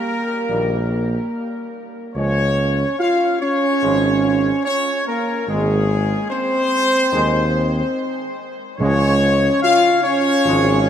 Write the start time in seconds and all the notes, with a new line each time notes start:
Already playing: A#3 A#4
0.47 A#1 D#3 G3
2.15 C#2 F3 G#3 C#4 C#5
2.99 F4 F5
3.41 C#4 C#5
3.82 G#1 F3 G#3
4.64 C#4 C#5
5.06 A#3 A#4
5.47 G#1 D#3 G#3 G#4
6.30 C4 C5
7.12 D#2 D#3 G#3
8.78 C#2 C#3 F3 G#3 C#4 C#5
9.62 F4 F5
10.03 C#4 C#5
10.45 G#1 F3 G#3